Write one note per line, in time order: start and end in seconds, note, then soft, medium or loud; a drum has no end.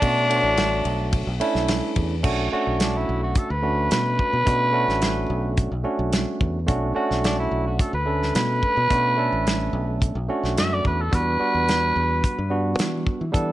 0.00 0.40 B2 medium
0.00 0.26 A3 medium
0.00 0.27 C#4 medium
0.00 1.39 D4 loud
0.00 0.27 D4 medium
0.00 0.27 F#4 medium
0.00 kick loud
0.00 ride medium
0.29 1.27 A3 medium
0.29 1.28 D4 medium
0.29 1.28 F#4 medium
0.29 1.27 C#5 medium
0.29 ride medium
0.43 0.81 A1 medium
0.57 snare loud
0.57 ride medium
0.85 1.23 B1 medium
0.85 ride medium
1.13 kick loud
1.13 ride medium
1.27 1.40 B1 loud
1.40 2.14 A3 medium
1.40 2.14 C#4 medium
1.40 2.14 D4 medium
1.40 2.14 E4 loud
1.40 ride medium
1.55 1.80 B1 medium
1.55 snare soft
1.68 snare loud
1.68 ride medium
1.96 2.22 E2 loud
1.96 kick medium
1.96 ride medium
2.23 2.49 B1 medium
2.23 2.48 A3 medium
2.23 2.48 C#4 medium
2.23 2.49 D4 medium
2.23 2.49 F#4 loud
2.23 kick loud
2.23 crash medium
2.52 3.50 A3 medium
2.52 3.50 C#4 medium
2.52 3.50 D4 medium
2.52 3.50 F#4 loud
2.67 3.04 B1 medium
2.80 2.98 D4 medium
2.80 snare loud
2.80 closed hi-hat medium
2.96 3.22 E4 medium
3.09 3.34 B1 medium
3.23 3.39 F#4 medium
3.35 3.52 A4 medium
3.35 kick loud
3.35 closed hi-hat medium
3.50 3.88 D2 medium
3.50 3.91 B4 medium
3.62 4.36 A3 medium
3.62 4.36 C#4 medium
3.62 4.36 D4 medium
3.62 4.37 F#4 medium
3.91 4.17 B2 medium
3.91 5.54 B4 loud
3.91 snare loud
3.91 closed hi-hat medium
4.19 kick medium
4.33 4.46 B2 medium
4.45 4.84 B2 medium
4.45 4.70 A3 medium
4.45 4.70 C#4 medium
4.45 4.71 D4 medium
4.45 4.71 F#4 medium
4.45 kick loud
4.45 closed hi-hat medium
4.72 5.71 A3 medium
4.72 5.71 C#4 medium
4.72 5.71 D4 medium
4.72 5.71 F#4 medium
4.88 5.26 A1 medium
4.88 snare soft
5.02 snare medium
5.02 closed hi-hat medium
5.30 5.68 B1 medium
5.57 kick loud
5.57 closed hi-hat medium
5.72 5.84 B1 medium
5.83 6.58 A3 medium
5.83 6.58 C#4 medium
5.83 6.58 D4 medium
5.83 6.58 F#4 medium
5.99 6.24 B1 medium
6.13 snare loud
6.13 closed hi-hat medium
6.41 6.66 E2 medium
6.41 kick medium
6.66 6.94 B1 loud
6.66 6.92 A3 medium
6.66 6.92 C#4 medium
6.66 6.93 D4 medium
6.66 6.93 F#4 medium
6.66 kick loud
6.66 closed hi-hat medium
6.95 7.93 A3 medium
6.95 7.93 C#4 medium
6.95 7.94 D4 medium
6.95 7.94 F#4 medium
6.95 muted fingered electric bass stroke soft
7.11 7.48 B1 medium
7.11 snare soft
7.24 7.38 D4 medium
7.24 snare loud
7.24 closed hi-hat medium
7.39 7.66 E4 medium
7.51 7.77 B1 medium
7.67 7.82 F#4 medium
7.79 7.93 A4 medium
7.79 kick loud
7.79 closed hi-hat medium
7.93 8.31 D2 medium
7.93 8.34 B4 medium
8.05 8.79 A3 medium
8.05 8.80 C#4 medium
8.05 8.80 D4 medium
8.05 8.80 A4 medium
8.23 snare soft
8.35 8.60 B2 medium
8.35 9.98 B4 loud
8.35 snare loud
8.35 closed hi-hat medium
8.63 muted fingered electric bass stroke soft
8.63 kick medium
8.77 8.89 B2 medium
8.90 9.28 B2 medium
8.90 9.14 A3 medium
8.90 9.15 C#4 medium
8.90 9.15 D4 medium
8.90 9.15 F#4 medium
8.90 kick loud
8.90 closed hi-hat medium
9.17 10.15 A3 medium
9.17 10.15 C#4 medium
9.17 10.16 D4 medium
9.17 10.16 A4 medium
9.32 9.70 A1 medium
9.47 snare loud
9.47 closed hi-hat soft
9.73 10.11 B1 medium
10.02 kick loud
10.02 closed hi-hat medium
10.15 10.28 B1 medium
10.28 11.02 A3 medium
10.28 11.02 C#4 medium
10.28 11.02 D4 medium
10.28 11.02 F#4 medium
10.43 10.56 B1 medium
10.43 snare soft
10.58 10.82 F#2 medium
10.58 10.75 E5 loud
10.58 snare loud
10.58 closed hi-hat medium
10.73 10.85 D5 medium
10.85 11.10 E2 medium
10.85 11.03 B4 medium
10.85 kick medium
11.01 11.17 A4 medium
11.11 11.37 E2 loud
11.11 11.36 G3 medium
11.11 11.36 B3 medium
11.11 11.36 D4 medium
11.11 11.37 F#4 medium
11.11 kick loud
11.11 closed hi-hat medium
11.15 12.76 B4 loud
11.39 12.37 G3 medium
11.39 12.37 B3 medium
11.39 12.37 D4 medium
11.39 12.37 F#4 medium
11.39 muted fingered electric bass stroke soft
11.54 11.92 E2 medium
11.68 snare loud
11.68 closed hi-hat medium
11.96 12.21 E2 medium
12.24 kick loud
12.24 closed hi-hat medium
12.38 12.75 G2 medium
12.50 13.23 G3 medium
12.50 13.23 B3 medium
12.50 13.23 D4 medium
12.50 13.24 F#4 medium
12.79 13.04 E3 medium
12.79 snare loud
12.79 closed hi-hat medium
13.07 kick medium
13.21 13.33 E3 medium
13.32 13.52 E3 medium
13.32 13.52 G3 medium
13.32 13.52 B3 medium
13.32 13.52 D4 medium
13.32 13.52 A4 loud
13.32 kick loud
13.32 closed hi-hat medium